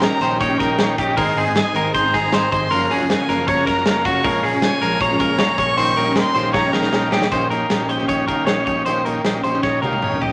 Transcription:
Already playing: A#2 D#3 G3 A#3 C#4 D#4 G4 A#4
0.02 C#4 D#4 G4 A#4 A#5, snare, hi-hat pedal, open hi-hat
0.21 A#1 A#2 D#3 A#3 C#4 D#4 G4 A#4 C5, hi-hat pedal, open hi-hat
0.40 A#1 C#4 D#4 G4 A#4 C#5 G5, kick, hi-hat pedal, open hi-hat
0.49 A#2 D#3 A#3 C#4 G4
0.59 A#1 C#4 D#4 G4 A#4, kick, snare, hi-hat pedal, open hi-hat
0.78 A#1 D#3 A#3 C#4 D#4 G4 C#5, snare, hi-hat pedal, open hi-hat
0.98 A#1 C#4 D#4 G4 A#4, kick, hi-hat pedal, open hi-hat
1.16 G#1 G#2 D#3 G#3 C4 D#4 G#4 A#4 C5, kick, hi-hat pedal, open hi-hat
1.36 G#1 C4 D#4 G#4 C5, hi-hat pedal, open hi-hat
1.47 G#2 D#3 G#3 C4 D#4
1.55 C4 D#4 G#4 D#5 G#5, snare, hi-hat pedal, open hi-hat
1.74 G#1 G#2 D#3 G#3 C4 D#4 G#4 A#4 C5, hi-hat pedal, open hi-hat
1.94 G#1 C4 D#4 G#4 C5 A#5, kick, hi-hat pedal, open hi-hat
2.03 G#2 D#3 G#3 C4 D#4
2.13 G#1 C4 D#4 G#4 C5, kick, snare, hi-hat pedal, open hi-hat
2.32 G#1 D#3 G#3 C4 D#4 G#4 C5, snare, hi-hat pedal, open hi-hat
2.51 G#1 C4 D#4 G#4 A#4 C5 C6, kick, hi-hat pedal, open hi-hat
2.70 F#1 F#2 C#3 F3 A#3 C#4 F4 F#4 G#4 A#4, hi-hat pedal, open hi-hat
2.89 F#1 C#4 F4 F#4 G#4 A#4, hi-hat pedal, open hi-hat
2.99 F#2 C#3 F3 A#3 C#4
3.09 C#4 F4 F#4 A#4 G#5, snare, hi-hat pedal, open hi-hat
3.28 F#1 F#2 C#3 F3 A#3 C#4 F4 F#4 A#4 C5, hi-hat pedal, open hi-hat
3.48 F#1 C#4 F4 F#4 A#4 C#5 A#5, kick, hi-hat pedal, open hi-hat
3.57 F#2 C#3 F3 A#3 C#4
3.67 F#1 C#4 F4 F#4 A#4, kick, snare, hi-hat pedal, open hi-hat
3.86 F#1 C#3 F3 A#3 C#4 F4 F#4 A#4, snare, hi-hat pedal, open hi-hat
4.05 F#1 C#4 F4 F#4 A#4 C#6, kick, hi-hat pedal, open hi-hat
4.23 A#1 A#2 F3 G#3 A#3 C#4 F4 G#4 A#4, kick, hi-hat pedal, open hi-hat
4.43 A#1 C#4 F4 G#4 A#4, hi-hat pedal, open hi-hat
4.54 A#2 F3 G#3 C#4
4.62 C#4 F4 G#4 C#5 G#5, snare, hi-hat pedal, open hi-hat
4.81 A#1 A#2 F3 G#3 C#4 F4 G#4 A#4, hi-hat pedal, open hi-hat
5.00 A#1 C#4 F4 G#4 C5 C#5 A#5, kick, hi-hat pedal, open hi-hat
5.11 A#2 F3 G#3 C#4
5.20 A#1 C#4 F4 G#4 A#4 C#5, kick, snare, hi-hat pedal, open hi-hat
5.38 A#1 A#2 F3 G#3 C#4 F4 G#4 A#4 C#5, snare, hi-hat pedal, open hi-hat
5.58 A#1 C#4 F4 G#4 A#4 C#5 C#6, kick, hi-hat pedal, open hi-hat
5.76 A#1 A#2 D#3 G3 A#3 C#4 D#4 G4 A#4 C5, hi-hat pedal, open hi-hat
5.96 A#1 C#4 D#4 G4 A#4, hi-hat pedal, open hi-hat
6.07 A#2 D#3 A#3 C#4 G4
6.16 C#4 D#4 G4 A#4 C6, snare, hi-hat pedal, open hi-hat
6.34 A#1 A#2 D#3 A#3 C#4 D#4 G4 A#4 C5, hi-hat pedal, open hi-hat
6.53 A#1 C#4 D#4 G4 A#4 C#5 A#5, kick, snare
6.64 A#2 D#3 A#3 C#4 G4
6.72 A#1 C#4 D#4 G4 A#4, snare
6.83 snare
6.91 A#1 D#3 A#3 C#4 D#4 G4 A#4, snare
6.95 G4
7.10 A#1 C#4 D#4 G4 A#4, snare
7.22 snare
7.31 A#1 A#2 D#3 A#3 C#4 D#4 G4 C5, kick, closed hi-hat
7.50 D#3 A#3 C#4 D#4 G4 A#4, closed hi-hat
7.70 A#1 C#4 D#4 G4, snare, closed hi-hat
7.81 A#3 C#4 G4
7.89 A#1 C#4 D#4 G4 C5, closed hi-hat
8.00 A#2 D#3 A#3 C#4 G4
8.08 A#1 C#4 D#4 G4 C#5, kick, closed hi-hat
8.27 C2 A#2 D#3 A#3 C#4 D#4 G4 A#4, kick, closed hi-hat
8.46 A#1 C#4 D#4 G4 C#5, snare, closed hi-hat
8.57 A#3 C#4 G4
8.66 A#1 C#4 D#4 G4 C#5, kick, closed hi-hat
8.86 A#1 A#2 D#3 A#3 C#4 D#4 G4 C5, closed hi-hat
9.05 D#3 A#3 C#4 D#4 G4 A#4, closed hi-hat
9.25 A#1 C#4 D#4 G4, snare, closed hi-hat
9.36 A#3 C#4 G4
9.44 A#1 C#4 D#4 G4 C5, closed hi-hat
9.54 A#2 D#3 A#3 C#4 G4
9.63 A#1 C#4 D#4 A#4 C#5, kick, snare
9.82 C2 A#2 D#3 A#3 C#4 D#4 G4 A#4, high tom
9.93 high tom
10.02 A#1 C#4 D#4 G4 C#5, mid tom
10.12 A#3 C#4 G4, mid tom
10.21 A#1 C#4 D#4 G4 D#5, floor tom

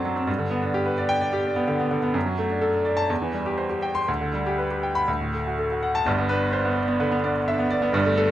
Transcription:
Already playing: F#2 F#3 C4 D4 A4 C5 D5 A5
0.05 F#3
0.16 C4
0.27 G2
0.38 D3
0.51 B3
0.62 D4
0.74 G4
0.86 B4
0.98 D5
1.09 G5
1.21 D5
1.33 G4
1.44 D4
1.56 B3
1.68 D3
1.80 B3
1.91 D3
2.03 B3
2.14 F#2
2.26 F#3
2.38 A3
2.50 D4
2.61 A4
2.73 D4
2.85 D5
2.97 A5
3.10 E2
3.22 E3
3.33 G3
3.46 G4
3.58 C5
3.70 G4
3.82 G5
3.95 C6
4.08 D2
4.21 D3
4.33 G3
4.47 G4
4.58 B4
4.71 G4
4.83 G5
4.95 B5
5.08 D2
5.20 A2
5.34 A3
5.47 F#4
5.59 A4
5.71 F#4
5.83 F#5
5.95 A5
6.06 G1 G2 D5
6.18 B3
6.29 D4 B4
6.53 D4 C5
6.65 B3
6.75 D5
6.88 B3
7.00 D3 B4
7.11 B3
7.24 D4 D5
7.48 D4 E5
7.59 B3
7.71 D5
7.82 B3
7.93 G1 G2 D5
8.06 A3
8.18 D4 A4

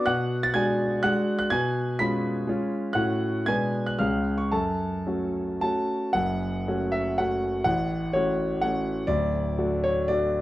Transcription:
0.06 B2 F#5 F#6
0.43 A6
0.54 G#3 D4 F#4 G#5 G#6
1.03 G#3 D4 F#4 F#5 F#6
1.39 F#6
1.50 B2 G#5 G#6
1.99 G#3 C#4 F4 B5 B6
2.48 G#3 C#4 F4
2.93 A2 A3 C#4 F#4 F#5 F#6
3.46 B2 G#3 D4 B4 G#5 G#6
3.86 F#6
3.98 C#2 G#3 C#4 G#4 F5 F6
4.38 C#6
4.51 F#2 A4 A5
5.07 A3 C#4 F#4
5.61 A3 C#4 F#4 A5
6.13 F#1 F#2 F#5
6.68 A3 C#4 F#4
6.92 E5
7.18 A3 C#4 F#4 F#5
7.64 A1 A2 F#5
8.13 A3 C#4 F#4 C#5
8.61 A3 C#4 F#4 F#5
9.07 D1 D2 D5
9.58 A3 D4 F#4
9.83 C#5
10.08 A3 D4 F#4 D5

